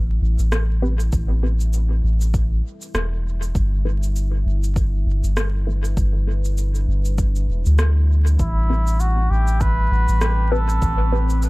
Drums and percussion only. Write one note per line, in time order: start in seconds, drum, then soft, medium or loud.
0.39 cabasa soft
0.52 cross-stick medium
0.52 cabasa medium
1.00 cabasa soft
1.13 kick loud
1.13 cabasa soft
1.61 cabasa soft
1.73 cabasa soft
2.21 cabasa soft
2.34 kick loud
2.34 cabasa medium
2.82 cabasa soft
2.95 cross-stick medium
2.95 cabasa medium
3.42 cabasa soft
3.55 kick loud
3.55 cabasa soft
4.03 cabasa soft
4.16 cabasa soft
4.64 cabasa soft
4.76 kick loud
4.76 cabasa soft
5.24 cabasa soft
5.37 cross-stick medium
5.37 cabasa soft
5.85 cabasa soft
5.97 kick loud
5.97 cabasa soft
6.45 cabasa soft
6.58 cabasa soft
6.75 cabasa soft
7.05 cabasa soft
7.18 kick loud
7.18 cabasa soft
7.36 cabasa soft
7.66 cabasa soft
7.79 cross-stick medium
7.79 cabasa soft
8.27 cabasa soft
8.39 kick loud
8.39 cabasa soft
8.87 cabasa soft
9.00 cabasa soft
9.48 cabasa soft
9.61 kick loud
9.61 cabasa soft
10.09 cabasa soft
10.21 cross-stick medium
10.21 cabasa soft
10.69 cabasa soft
10.82 kick loud
10.82 cabasa soft
11.30 cabasa soft
11.43 cabasa soft